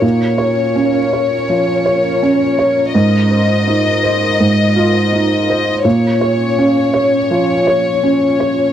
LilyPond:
<<
  \new Staff \with { instrumentName = "Violin section" } { \time 4/4 \key bes \minor \tempo 4 = 82 des''1 | ees''1 | des''1 | }
  \new Staff \with { instrumentName = "Ambient pad" } { \time 4/4 \key bes \minor << { <f' bes'>1~ | <f' bes'>1 | <f' des''>1 | } \\ { des'1 | ees'1 | des'1 | } >> }
  \new Staff \with { instrumentName = "Felt piano" } { \time 4/4 \key bes \minor bes,8 des''8 des'8 des''8 f8 des''8 des'8 des''8 | aes,8 c''8 ees'8 c''8 aes,8 f'8 ees'8 c''8 | bes,8 des''8 des'8 des''8 f8 des''8 des'8 des''8 | }
>>